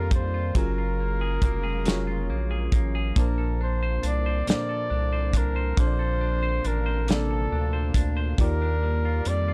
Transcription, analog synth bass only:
0, 0, Header, 1, 2, 480
1, 0, Start_track
1, 0, Key_signature, -2, "major"
1, 0, Tempo, 869565
1, 307, Time_signature, 6, 3, 24, 8
1, 5264, End_track
2, 0, Start_track
2, 0, Title_t, "Analog synth bass"
2, 0, Program_c, 0, 38
2, 0, Note_on_c, 0, 41, 94
2, 286, Note_off_c, 0, 41, 0
2, 307, Note_on_c, 0, 30, 120
2, 765, Note_off_c, 0, 30, 0
2, 784, Note_on_c, 0, 29, 85
2, 1268, Note_on_c, 0, 34, 93
2, 1276, Note_off_c, 0, 29, 0
2, 1485, Note_off_c, 0, 34, 0
2, 1504, Note_on_c, 0, 33, 98
2, 1723, Note_off_c, 0, 33, 0
2, 1746, Note_on_c, 0, 34, 105
2, 2204, Note_off_c, 0, 34, 0
2, 2228, Note_on_c, 0, 36, 96
2, 2446, Note_off_c, 0, 36, 0
2, 2469, Note_on_c, 0, 36, 45
2, 2517, Note_off_c, 0, 36, 0
2, 2709, Note_on_c, 0, 36, 92
2, 3166, Note_off_c, 0, 36, 0
2, 3190, Note_on_c, 0, 34, 98
2, 3646, Note_off_c, 0, 34, 0
2, 3670, Note_on_c, 0, 33, 97
2, 4127, Note_off_c, 0, 33, 0
2, 4151, Note_on_c, 0, 38, 89
2, 4367, Note_off_c, 0, 38, 0
2, 4386, Note_on_c, 0, 38, 93
2, 4604, Note_off_c, 0, 38, 0
2, 4629, Note_on_c, 0, 39, 114
2, 5086, Note_off_c, 0, 39, 0
2, 5112, Note_on_c, 0, 41, 91
2, 5264, Note_off_c, 0, 41, 0
2, 5264, End_track
0, 0, End_of_file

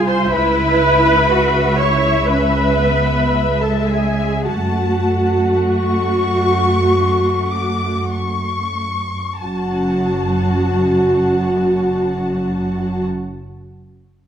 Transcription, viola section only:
0, 0, Header, 1, 2, 480
1, 0, Start_track
1, 0, Key_signature, 3, "minor"
1, 0, Tempo, 977199
1, 162, Time_signature, 4, 2, 24, 8
1, 1124, Tempo, 1047120
1, 1604, Tempo, 1138520
1, 2084, Tempo, 1217039
1, 3524, Tempo, 1295896
1, 4004, Tempo, 1234568
1, 4964, Tempo, 1265823
1, 5868, End_track
2, 0, Start_track
2, 0, Title_t, "Viola section"
2, 0, Program_c, 0, 48
2, 34, Note_on_c, 0, 72, 77
2, 155, Note_off_c, 0, 72, 0
2, 158, Note_on_c, 0, 71, 99
2, 876, Note_on_c, 0, 73, 88
2, 877, Note_off_c, 0, 71, 0
2, 1123, Note_off_c, 0, 73, 0
2, 1123, Note_on_c, 0, 71, 80
2, 1720, Note_off_c, 0, 71, 0
2, 1721, Note_on_c, 0, 69, 66
2, 1837, Note_on_c, 0, 68, 63
2, 1840, Note_off_c, 0, 69, 0
2, 2078, Note_off_c, 0, 68, 0
2, 2080, Note_on_c, 0, 66, 74
2, 3522, Note_off_c, 0, 66, 0
2, 4008, Note_on_c, 0, 66, 64
2, 5398, Note_off_c, 0, 66, 0
2, 5868, End_track
0, 0, End_of_file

